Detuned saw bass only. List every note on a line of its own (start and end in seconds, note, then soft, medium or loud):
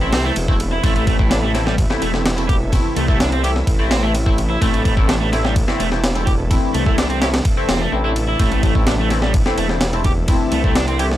0.00 0.14 A1 medium
0.13 0.31 C2 medium
0.37 0.79 E1 medium
0.84 1.86 A1 loud
2.02 2.80 E1 medium
2.96 3.63 C2 medium
3.67 4.57 A1 medium
4.62 5.64 A1 loud
5.80 6.58 E1 medium
6.74 7.41 C2 medium
7.69 7.87 E1 loud
7.93 8.35 A1 medium
8.40 9.42 A1 loud
9.58 10.36 E1 medium
10.52 11.17 C2 medium